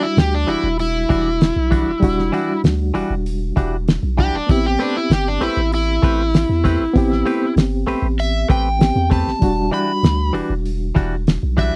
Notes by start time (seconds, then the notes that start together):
Already playing: G3 D4 F#4
0.03 E4
0.17 D2 G4, snare, open hi-hat
0.34 D4
0.47 E1 E3 G3 D4 E4 F#4, open hi-hat
0.64 E1
0.79 E4, open hi-hat
1.09 E1 E3 G3 D4 F#4, kick, open hi-hat
1.41 snare, open hi-hat
1.56 B1
1.71 E3 G3 D4 F#4, kick, open hi-hat
1.87 E1
2.00 E1 G3 D4, kick, open hi-hat
2.04 F#4
2.19 snare
2.32 E3 G3 D4 F#4, open hi-hat
2.64 D2, snare, open hi-hat
2.94 E1 E3 G3 D4 F#4, open hi-hat
3.10 E1
3.26 open hi-hat
3.56 E1 E3 G3 D4 F#4, kick, open hi-hat
3.88 snare, open hi-hat
4.03 B1
4.17 E3 G3 D4 F#4 G4, kick, open hi-hat
4.34 E1 D4
4.47 A1 B3 C4 E4 G4, kick, open hi-hat
4.66 G4
4.79 A3 C4 D4 G4 B4, open hi-hat
4.97 E4
5.10 G1 G4, snare, open hi-hat
5.28 D4
5.41 A1 A3 C4 E4 G4 B4, open hi-hat
5.57 A1
5.72 E4, open hi-hat
6.02 A1 A3 C4 G4 B4, kick, open hi-hat
6.34 snare, open hi-hat
6.49 E2
6.64 A3 C4 G4 B4, kick, open hi-hat
6.80 A1
6.94 A1 B3 C4 G4, kick, open hi-hat
7.12 snare
7.26 A3 C4 G4 B4, open hi-hat
7.56 G1, snare, open hi-hat
7.87 A1 A3 C4 G4 B4, open hi-hat
8.02 A1
8.19 E5, open hi-hat
8.49 A1 A3 C4 G4 B4 G5, kick, open hi-hat
8.79 B3 C4 G4, snare, open hi-hat
8.96 E2
9.10 A3 C4 G4 B4 A5, kick, open hi-hat
9.27 A1, snare
9.39 E1 G3 D4 F#4, kick, open hi-hat
9.71 E3 G3 D4 F#4 B5, open hi-hat
10.03 D2, snare, open hi-hat
10.33 E1 E3 G3 D4 F#4, open hi-hat
10.50 E1
10.66 open hi-hat
10.95 E1 E3 G3 D4 F#4, kick, open hi-hat
11.27 snare, open hi-hat
11.43 B1
11.57 E3 G3 D4 F#4 E5, kick, open hi-hat